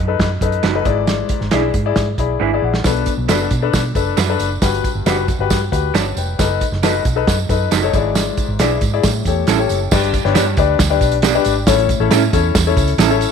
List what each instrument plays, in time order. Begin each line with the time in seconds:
Already playing: fingered electric bass F#2
0.08 upright piano D#4 A4 B4
0.19 fingered electric bass F#2, kick, snare, closed hi-hat
0.41 fingered electric bass F#2, upright piano D#4 A4 B4, kick, closed hi-hat
0.52 closed hi-hat
0.63 fingered electric bass F#1, clean electric guitar A3 D#4 F#4 B4, snare, closed hi-hat
0.75 upright piano D#4 A4 B4
0.85 fingered electric bass G#1, upright piano G#2 E4 G#4 D5, kick, closed hi-hat
1.07 snare, closed hi-hat
1.29 kick, closed hi-hat
1.41 fingered electric bass G#1, snare
1.51 fingered electric bass B1, clean electric guitar G#3 D4 E4 B4, upright piano E4 G#4 D5, snare, closed hi-hat
1.74 fingered electric bass G#2, kick, closed hi-hat
1.86 upright piano E4 G#4 D5
1.96 fingered electric bass G#2, kick, snare, closed hi-hat
2.18 fingered electric bass B1, upright piano E4 G#4 D5 B5, kick, closed hi-hat
2.40 fingered electric bass G#1, clean electric guitar G#3 D4 E4 B4, upright piano G#5
2.54 upright piano E4 G#4 D5
2.62 fingered electric bass A#1, upright piano F#5
2.74 snare
2.84 fingered electric bass B1, upright piano B2 D4 A4 B4, kick, snare, closed hi-hat, tambourine
2.96 closed hi-hat
3.06 kick, closed hi-hat, tambourine
3.18 fingered electric bass B1
3.28 fingered electric bass F#1, clean electric guitar A3 D4 F#4 B4, upright piano D4 A4 B4, snare, closed hi-hat, tambourine
3.51 fingered electric bass B2, kick, closed hi-hat, tambourine
3.62 upright piano D4 A4 B4
3.73 fingered electric bass B2, kick, snare, closed hi-hat, tambourine
3.95 fingered electric bass F#1, upright piano D4 A4 B4, kick, closed hi-hat, tambourine
4.17 fingered electric bass F#2, clean electric guitar A3 D4 F#4 B4, snare, closed hi-hat, tambourine
4.29 upright piano D4 A4 B4
4.39 fingered electric bass F#1, closed hi-hat, tambourine
4.62 fingered electric bass G1, upright piano G2 F#4 G4 B4, kick, snare, closed hi-hat, tambourine
4.75 closed hi-hat
4.84 kick, closed hi-hat, tambourine
4.95 fingered electric bass G1
5.06 fingered electric bass F#1, clean electric guitar G3 D4 F#4 B4, upright piano F#4 G4 B4, snare, closed hi-hat, tambourine
5.28 kick, closed hi-hat, tambourine
5.39 fingered electric bass G1, upright piano F#4 G4 B4
5.50 fingered electric bass G2, kick, snare, closed hi-hat, tambourine
5.72 fingered electric bass D2, upright piano F#4 G4 B4, kick, closed hi-hat, tambourine
5.94 fingered electric bass G1, clean electric guitar G3 D4 F#4 B4, upright piano C#5 A5, snare, closed hi-hat, tambourine
6.16 fingered electric bass F1, upright piano B4 G5, closed hi-hat, tambourine
6.39 fingered electric bass F#1, upright piano D#4 A4 B4, kick, snare, closed hi-hat, tambourine
6.61 kick, closed hi-hat, tambourine
6.72 fingered electric bass F#1, snare
6.83 clean electric guitar A3 D#4 F#4 B4, upright piano D#4 A4 B4, snare, closed hi-hat, tambourine
7.05 fingered electric bass B1, kick, closed hi-hat, tambourine
7.16 upright piano D#4 A4 B4
7.27 fingered electric bass F#2, kick, snare, closed hi-hat, tambourine
7.49 fingered electric bass F#2, upright piano D#4 A4 B4, kick, closed hi-hat, tambourine
7.71 fingered electric bass F#1, clean electric guitar A3 D#4 F#4 B4, snare, closed hi-hat, tambourine
7.82 upright piano D#4 A4 C#5
7.93 fingered electric bass G#1, upright piano G#2 E4 G#4 D5, kick, closed hi-hat, tambourine
8.15 snare, closed hi-hat, tambourine
8.37 kick, closed hi-hat, tambourine
8.48 fingered electric bass G#1
8.59 fingered electric bass B1, clean electric guitar G#3 D4 E4 B4, upright piano E4 G#4 D5, snare, closed hi-hat, tambourine
8.81 fingered electric bass G#2, kick, closed hi-hat, tambourine
8.94 upright piano E4 G#4 D5
9.03 fingered electric bass A2, upright piano A2, kick, snare, closed hi-hat, tambourine
9.25 fingered electric bass E2, upright piano G4 A4 C#5, kick, closed hi-hat, tambourine
9.47 fingered electric bass A1, clean electric guitar G3 C#4 E4 A4, snare, closed hi-hat, tambourine
9.59 upright piano G4 A4 C#5
9.69 fingered electric bass F#1, closed hi-hat, tambourine
9.91 fingered electric bass G1, upright piano G2 D4 G4 B4 D5, kick, snare, crash, tambourine
10.03 closed hi-hat
10.13 kick, closed hi-hat, tambourine
10.24 fingered electric bass G1, upright piano D4 G4 B4 C#5, snare
10.34 fingered electric bass G2, clean electric guitar G3 B3 D4 G4, snare, closed hi-hat, tambourine
10.57 fingered electric bass D2, upright piano D4 G4 B4 D5, kick, closed hi-hat, tambourine
10.79 fingered electric bass D2, kick, snare, closed hi-hat, tambourine
10.90 upright piano D4 G4 B4 D5
11.01 fingered electric bass B1, kick, closed hi-hat, tambourine
11.12 closed hi-hat
11.22 clean electric guitar G3 B3 D4 G4, snare, closed hi-hat, tambourine
11.35 upright piano D4 G4 B4 D5
11.45 fingered electric bass G#1, closed hi-hat, tambourine
11.67 fingered electric bass A1, upright piano A2 C#4 E4 A4 C#5, kick, snare, closed hi-hat, tambourine
11.78 closed hi-hat
11.89 kick, closed hi-hat, tambourine
12.00 fingered electric bass A1, upright piano C#4 E4 A4 C#5
12.10 fingered electric bass A2, clean electric guitar A3 C#4 E4 A4, snare, closed hi-hat, tambourine
12.33 fingered electric bass E2, upright piano C#4 E4 A4 C#5, kick, closed hi-hat, tambourine
12.55 fingered electric bass E2, kick, snare, closed hi-hat, tambourine
12.67 upright piano C#4 E4 A4 C#5
12.77 fingered electric bass C#2, kick, closed hi-hat, tambourine
12.88 closed hi-hat
12.98 fingered electric bass A1, clean electric guitar A3 C#4 E4 A4, snare, closed hi-hat, tambourine
13.10 upright piano C#4 E4 A4 C#5
13.21 closed hi-hat, tambourine